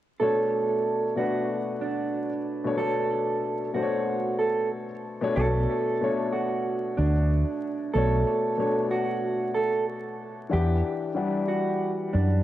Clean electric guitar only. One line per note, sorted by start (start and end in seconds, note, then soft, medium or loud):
0.20 1.13 A4 medium
1.17 1.78 F#4 medium
1.81 2.74 D4 medium
2.78 3.71 A4 medium
3.74 4.35 F#4 medium
4.39 4.68 A4 medium
5.36 6.29 A4 medium
6.32 6.93 F#4 medium
6.97 7.90 D4 medium
7.94 8.87 A4 loud
8.91 9.52 F#4 medium
9.54 9.84 A4 medium
10.53 11.45 G4 medium
11.48 12.09 F#4 medium
12.13 12.43 D4 medium